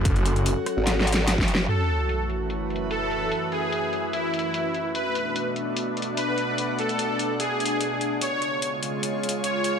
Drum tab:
HH |x-----x-----x-----x-----x-----------x-----------x-----------x--x--------x-----------x-----------|x-----------x-----------x-----------x-----------x-----------x--x--------x-----------x-----------|x-----------x-----------x-----------x-----------x-----------x--x--------x-----------x-----------|x-----------x-----------x-----------x-----------x-----------x--x--------x-----------x-----------|
SD |------------------------------------r-----------o-------o-------o-------o-------o-------o-------|------------------------------------------------------------------------------------------------|------------------------------------------------------------------------------------------------|------------------------------------------------------------------------------------------------|
BD |o-----------------------------------------------------------------------------o-----------------|------------------------------------------------------------------------------------------------|------------------------------------------------------------------------------------------------|------------------------------------------------------------------------------------------------|

HH |x-----------x-----x-----x-----------x-----------x-----------x--x--------x-----------x-----------|x-----------x-----------x-----------x-----------x-----------x--x--------x-----------x-----------|
SD |------------------------------------------------------------------------------------------------|------------------------------------------------------------------------------------------------|
BD |------------------------------------------------------------------------------------------------|------------------------------------------------------------------------------------------------|